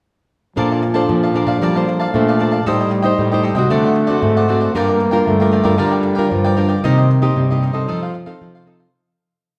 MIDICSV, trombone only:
0, 0, Header, 1, 2, 480
1, 0, Start_track
1, 0, Key_signature, -2, "major"
1, 0, Tempo, 523104
1, 522, Time_signature, 4, 2, 24, 8
1, 8798, End_track
2, 0, Start_track
2, 0, Title_t, "Trombone"
2, 0, Program_c, 0, 57
2, 513, Note_on_c, 0, 53, 85
2, 1469, Note_on_c, 0, 55, 82
2, 1483, Note_off_c, 0, 53, 0
2, 1706, Note_on_c, 0, 53, 88
2, 1720, Note_off_c, 0, 55, 0
2, 1949, Note_off_c, 0, 53, 0
2, 1955, Note_on_c, 0, 57, 90
2, 2437, Note_on_c, 0, 55, 90
2, 2451, Note_off_c, 0, 57, 0
2, 2899, Note_off_c, 0, 55, 0
2, 2904, Note_on_c, 0, 55, 88
2, 3358, Note_off_c, 0, 55, 0
2, 3379, Note_on_c, 0, 57, 98
2, 3835, Note_off_c, 0, 57, 0
2, 3854, Note_on_c, 0, 57, 98
2, 4329, Note_on_c, 0, 58, 98
2, 4343, Note_off_c, 0, 57, 0
2, 4830, Note_on_c, 0, 57, 95
2, 4843, Note_off_c, 0, 58, 0
2, 5311, Note_on_c, 0, 55, 98
2, 5324, Note_off_c, 0, 57, 0
2, 5793, Note_on_c, 0, 53, 81
2, 5807, Note_off_c, 0, 55, 0
2, 6135, Note_off_c, 0, 53, 0
2, 6279, Note_on_c, 0, 51, 85
2, 6765, Note_on_c, 0, 55, 87
2, 6779, Note_off_c, 0, 51, 0
2, 7229, Note_on_c, 0, 53, 75
2, 7243, Note_off_c, 0, 55, 0
2, 7956, Note_off_c, 0, 53, 0
2, 8798, End_track
0, 0, End_of_file